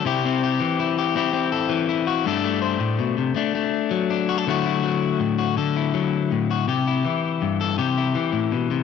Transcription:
\new Staff \with { instrumentName = "Clean electric guitar" } { \time 12/8 \key d \mixolydian \tempo 4. = 108 << { <c' e' g'>8 c'8 g'4 e'8 g'8 <c' e' g'>8 c'8 a'4 e'8 fis'8 | <a d' a'>8 a8 c''2 <a d'>8 a4. d'8 fis'16 a'16 | <fis a e' fis'>8 e'2 fis'8 a'8 e'2 fis'8 | g'8 e'2 a'8 g'8 e'2~ e'8 | } \\ { c4. e2. e4. | g,4. a,8 b,8 c8 r4. fis4. | d4 fis4 a,4 d4 fis4 a,4 | c4 e4 g,4 c4 e8 a,8 b,8 c8 | } >> }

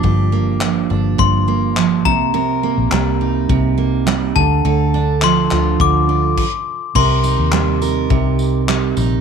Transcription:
<<
  \new Staff \with { instrumentName = "Glockenspiel" } { \time 4/4 \key c \dorian \tempo 4 = 104 d'''2 c'''4. bes''8~ | bes''2.~ bes''8 a''8~ | a''4 c'''4 d'''4 r4 | c'''1 | }
  \new Staff \with { instrumentName = "Steel-string acoustic guitar" } { \clef bass \time 4/4 \key c \dorian <g, f bes d' g'>8 bes8 f8 d'8 g,8 bes8 f8 c8 | <c bes'>8 bes8 g8 ees'8 c8 bes8 g8 d8 | <d a'>8 d'8 f8 f'8 d8 d'8 r4 | <c bes'>8 ees'8 g8 bes'8 c4 g8 ees'8 | }
  \new Staff \with { instrumentName = "Fingered electric bass" } { \clef bass \time 4/4 \key c \dorian g,,4. g,,8 g,,4. c,8~ | c,8. bes,,16 c,4 c,4. d,8 | d,4. d,8 d,4 r4 | c,8. ees,4~ ees,16 c,4. bes,,8 | }
  \new DrumStaff \with { instrumentName = "Drums" } \drummode { \time 4/4 bd4 hc4 bd4 hc8 bd8 | r4 hc4 bd4 hc8 bd8 | r4 hc8 hc8 bd4 <cymc bd>4 | <cymc bd>8 tamb8 hc8 tamb8 bd8 tamb8 hc8 tamb8 | }
>>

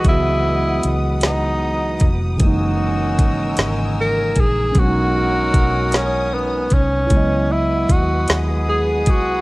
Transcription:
<<
  \new Staff \with { instrumentName = "String section" } { \time 6/8 \key cis \dorian \tempo 4. = 51 << { <b' fis''>2. | <ais' gis'' e'''>2. | <cis'' dis'''>2. | <b' fis''>2. | } \\ { dis'''2.~ | dis'''2. | r2. | dis'''2. | } >> }
  \new Staff \with { instrumentName = "Tenor saxophone" } { \time 6/8 \key cis \dorian e'4 r8 dis'4 r8 | r2 ais'8 gis'8 | fis'4. cis'8 b8 cis'8~ | cis'8 e'8 fis'8 r8 gis'8 fis'8 | }
  \new Staff \with { instrumentName = "Horn section" } { \time 6/8 \key cis \dorian <gis b dis''>2~ <gis b dis''>8 r8 | <cis' dis' fis'>2~ <cis' dis' fis'>8 r8 | <dis' fis' ais'>2~ <dis' fis' ais'>8 r8 | r4. <gis fis' gis'>4. | }
  \new Staff \with { instrumentName = "Tine electric piano" } { \time 6/8 \key cis \dorian <e fis gis b fis'>2. | <cis e gis ais dis'>2. | <fis gis b cis' d' dis'>2. | <fis gis b e' dis''>2. | }
  \new Staff \with { instrumentName = "Fingered electric bass" } { \clef bass \time 6/8 \key cis \dorian cis,4 cis,4. eis,,8 | fis,,4 gis,,8 gis,,4 ais,,8 | b,,4 b,,4. bis,,8 | cis,4 dis,8 dis,4 bis,,8 | }
  \new DrumStaff \with { instrumentName = "Drums" } \drummode { \time 6/8 <hh bd>4 hh8 <hh sn>4 <hh bd>8 | <hh bd>4 <hh bd>8 <hh sn>4 <hh bd>8 | <hh bd>4 <hh bd>8 <hh sn>4 <hh bd>8 | <hh bd>4 <hh bd>8 <hh sn>4 <hh bd>8 | }
>>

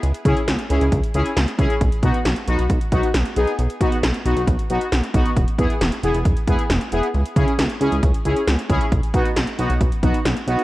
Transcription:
<<
  \new Staff \with { instrumentName = "Analog polysynth" } { \time 4/4 \key b \mixolydian \tempo 4 = 135 r8 <cis' e' gis'>8 r8 <cis' e' gis'>8 r8 <cis' e' gis'>8 r8 <cis' e' gis'>8 | r8 <b dis' fis'>8 r8 <b dis' fis'>8 r8 <b dis' fis'>8 r8 <b dis' gis'>8 | r8 <b dis' fis'>8 r8 <b dis' fis'>8 r8 <b dis' fis'>8 r8 <b dis' fis'>8 | r8 <b e' gis'>8 r8 <b e' gis'>8 r8 <b e' gis'>8 r8 <b e' gis'>8 |
r8 <cis' e' gis'>8 r8 <cis' e' gis'>8 r8 <cis' e' gis'>8 r8 <cis' e' gis'>8 | r8 <b dis' fis'>8 r8 <b dis' fis'>8 r8 <b dis' fis'>8 r8 <b dis' fis'>8 | }
  \new Staff \with { instrumentName = "Analog synth bass" } { \clef bass \time 4/4 \key b \mixolydian cis,16 r16 cis16 r16 cis,16 r16 cis,16 cis,16 cis,16 r16 cis,16 r16 cis,16 r16 cis,16 r16 | b,,16 r16 b,16 r16 b,,16 r16 b,,16 b,,16 b,,16 r16 b,,16 r16 b,,16 r16 b,,16 r16 | b,,16 r16 b,16 r16 b,,16 r16 b,,16 b,,16 b,,16 r16 b,,16 r16 b,,16 r16 b,,16 r16 | e,,16 r16 e,16 r16 e,,16 r16 e,,16 e,,16 e,,16 r16 e,,16 r16 e,,16 r16 e,,16 r16 |
cis,16 r16 cis16 r16 cis,16 r16 cis,16 cis,16 cis,16 r16 cis,16 r16 cis,16 r16 cis,16 r16 | b,,16 r16 b,16 r16 b,,16 r16 b,,16 b,,16 b,,16 r16 b,,16 r16 b,,16 r16 b,,16 r16 | }
  \new DrumStaff \with { instrumentName = "Drums" } \drummode { \time 4/4 hh16 hh16 <hh bd>16 hh16 <hh sn>16 hh16 hh16 hh16 <hh bd>16 hh16 hh16 hh16 <hh sn>16 hh16 <hh bd>16 hh16 | <hh bd>16 hh16 <hh bd>16 hh16 <hh sn>16 hh16 hh16 hh16 <hh bd>16 hh16 <hh bd>16 hh16 <hh sn>16 hh16 hh16 hh16 | hh16 hh16 <hh bd>16 hh16 <hh sn>16 hh16 hh16 hh16 <hh bd>16 hh16 hh16 hh16 <hh sn>16 hh16 <hh bd>16 hh16 | <hh bd>16 hh16 <hh bd>16 hh16 <hh sn>16 hh16 hh16 hh16 <hh bd>16 hh16 <hh bd>16 hh16 <hh sn>16 hh16 hh16 hh16 |
hh16 hh16 <hh bd>16 hh16 <hh sn>16 hh16 hh16 hh16 <hh bd>16 hh16 hh16 hh16 <hh sn>16 hh16 <hh bd>16 hh16 | <hh bd>16 hh16 <hh bd>16 hh16 <hh sn>16 hh16 hh16 hh16 <hh bd>16 hh16 <hh bd>16 hh16 <hh sn>16 hh16 hh16 hh16 | }
>>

